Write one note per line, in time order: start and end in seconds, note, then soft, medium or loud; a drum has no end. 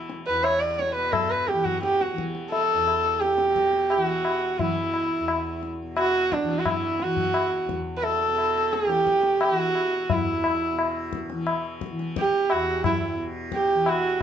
0.00 0.28 E2 medium
0.00 0.89 B2 medium
0.00 1.53 E3 medium
0.10 tabla te medium
0.27 2.73 E2 medium
0.27 0.45 B4 medium
0.43 0.62 C#5 medium
0.43 tabla na medium
0.60 0.80 D5 medium
0.79 0.95 C#5 medium
0.79 tabla te medium
0.90 3.34 B2 medium
0.95 1.14 B4 medium
1.12 1.32 A4 medium
1.12 tabla na medium
1.12 tabla ge medium
1.30 1.50 B4 medium
1.48 1.67 G4 medium
1.48 tabla te medium
1.53 2.12 E3 medium
1.65 1.82 F#4 medium
1.65 tabla ge soft
1.83 2.03 G4 medium
1.83 tabla te medium
2.01 2.18 F#4 medium
2.01 tabla te medium
2.12 3.97 E3 medium
2.18 tabla ke medium
2.35 tabla te medium
2.50 3.21 A4 medium
2.50 tabla tin medium
2.74 5.19 E2 medium
2.87 tabla na medium
3.20 3.91 G4 medium
3.20 tabla te medium
3.35 5.82 B2 medium
3.35 tabla te medium
3.56 tabla ke medium
3.73 tabla te medium
3.90 4.02 G4 medium
3.90 tabla na medium
3.97 4.57 E3 medium
4.02 4.61 F#4 medium
4.25 tabla na medium
4.57 6.43 E3 medium
4.57 5.63 E4 medium
4.57 tabla tin medium
4.57 tabla ge medium
4.94 tabla na medium
5.19 7.65 E2 medium
5.28 tabla na medium
5.63 tabla te medium
5.82 8.27 B2 medium
5.97 6.34 F#4 medium
5.97 tabla na medium
6.32 6.60 D4 medium
6.32 tabla ke medium
6.43 7.04 E3 medium
6.49 tabla te medium
6.59 6.70 F#4 medium
6.65 7.04 E4 medium
6.65 tabla na medium
6.65 tabla ge medium
7.00 8.86 E3 medium
7.00 7.70 F#4 medium
7.00 tabla te medium
7.17 tabla ge soft
7.34 tabla na medium
7.66 10.10 E2 medium
7.66 tabla ke medium
7.97 8.05 B4 medium
8.03 8.75 A4 medium
8.03 tabla tin medium
8.27 10.71 B2 medium
8.38 tabla na medium
8.73 8.89 G#4 medium
8.73 tabla te medium
8.86 9.50 E3 medium
8.86 9.44 G4 medium
8.86 tabla te medium
9.07 tabla ke medium
9.23 tabla te medium
9.41 9.55 G4 medium
9.41 tabla na medium
9.50 11.32 E3 medium
9.55 10.14 F#4 medium
9.75 tabla na medium
10.10 12.52 E2 medium
10.10 11.14 E4 medium
10.10 tabla tin medium
10.10 tabla ge medium
10.44 tabla na medium
10.71 13.15 B2 medium
10.79 tabla na medium
11.13 tabla ke medium
11.30 11.91 E3 medium
11.30 tabla te medium
11.47 tabla na medium
11.81 tabla ke medium
11.91 13.74 E3 medium
11.99 tabla te medium
12.16 12.53 G4 medium
12.16 tabla ke medium
12.50 14.22 E2 medium
12.50 12.85 F#4 medium
12.50 tabla na medium
12.84 13.17 E4 medium
12.84 tabla na medium
12.84 tabla ge medium
13.15 14.22 B2 medium
13.52 13.90 G4 medium
13.52 tabla ke medium
13.74 14.22 E3 medium
13.86 14.22 F#4 medium
13.86 tabla na medium